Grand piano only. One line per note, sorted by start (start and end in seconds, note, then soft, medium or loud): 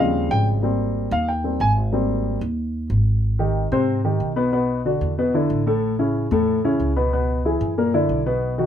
0.00 0.60 C#3 medium
0.00 0.60 F3 medium
0.00 0.60 G3 medium
0.00 0.60 C4 medium
0.00 0.29 F5 medium
0.31 0.47 G5 loud
0.63 1.09 G3 medium
0.63 1.10 A#3 medium
0.63 1.10 C4 medium
1.12 1.28 F5 medium
1.28 1.58 G5 medium
1.44 1.59 G3 soft
1.44 1.59 A#3 soft
1.44 1.59 C4 medium
1.61 1.71 G#5 loud
1.92 2.39 G3 medium
1.92 2.39 A#3 medium
1.92 2.39 C4 medium
3.39 3.66 D#3 medium
3.39 3.66 D#4 medium
3.39 3.66 G4 medium
3.72 3.98 C3 medium
3.72 3.98 C4 medium
3.72 3.98 C5 medium
4.04 4.31 D#3 medium
4.04 4.31 D#4 medium
4.04 4.31 G4 medium
4.36 4.49 B2 medium
4.36 4.49 B3 medium
4.36 4.50 B4 medium
4.52 4.79 B2 medium
4.52 4.79 B3 medium
4.52 4.79 B4 medium
4.85 5.12 D3 medium
4.85 5.12 D4 medium
4.85 5.12 F#4 medium
5.18 5.31 B2 medium
5.18 5.31 B3 medium
5.18 5.32 B4 medium
5.34 5.61 D3 medium
5.34 5.61 D4 medium
5.34 5.61 E4 medium
5.67 5.93 A2 medium
5.67 5.93 A3 medium
5.67 5.93 A4 medium
5.99 6.25 C#3 medium
5.99 6.26 C#4 medium
5.99 6.26 E4 medium
6.31 6.58 A2 medium
6.31 6.58 A3 medium
6.31 6.58 A4 medium
6.64 6.91 C#3 medium
6.64 6.91 C#4 medium
6.64 6.91 E4 medium
6.96 7.10 B2 medium
6.96 7.10 B3 medium
6.96 7.10 B4 medium
7.13 7.39 B2 medium
7.13 7.39 B3 medium
7.13 7.39 B4 medium
7.45 7.72 E3 medium
7.45 7.72 E4 medium
7.45 7.72 G#4 medium
7.78 7.91 A#2 medium
7.78 7.91 A#3 medium
7.78 7.91 A#4 medium
7.94 8.20 D3 medium
7.94 8.20 D4 medium
7.94 8.21 E4 medium
8.26 8.53 B2 medium
8.26 8.53 B3 medium
8.26 8.53 B4 medium
8.58 8.66 D#3 medium
8.58 8.66 D#4 medium
8.58 8.66 F#4 medium